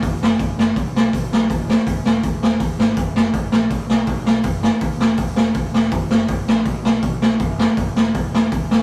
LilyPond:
<<
  \new Staff \with { instrumentName = "Picked electric bass" } { \clef bass \time 4/4 \key fis \mixolydian \tempo 4 = 162 fis,,8 fis,,8 fis,,8 fis,,8 b,,8 b,,8 b,,8 b,,8 | fis,,4 fis,,8 e,,8 e,,8 e,,8 e,,8 gis,,8 | fis,,8 fis,,8 fis,,8 ais,,8 b,,8 b,,8 b,,8 b,,8 | fis,,4 dis,8 e,,8 e,,8 e,,8 e,,8 e,,8 |
fis,,8 fis,,8 fis,,8 ais,,8 b,,8 b,,8 b,,8 b,,8 | fis,,4 fis,,8 e,,8 e,,8 e,,8 e,,8 e,,8 | }
  \new DrumStaff \with { instrumentName = "Drums" } \drummode { \time 4/4 <hho bd>8 sn8 <hho bd>8 sn8 <hho bd>8 sn8 <hho bd>8 sn8 | <hho bd>8 sn8 <hho bd>8 sn8 <hho bd>8 sn8 <hho bd>8 sn8 | <hho bd>8 sn8 <hho bd>8 sn8 <hho bd>8 sn8 <hho bd>8 sn8 | <hho bd>8 sn8 <hho bd>8 sn8 <hho bd>8 sn8 <hho bd>8 sn8 |
<hho bd>8 sn8 <hho bd>8 sn8 <hho bd>8 sn8 <hho bd>8 sn8 | <hho bd>8 sn8 <hho bd>8 sn8 <hho bd>8 sn8 <hho bd>8 sn8 | }
>>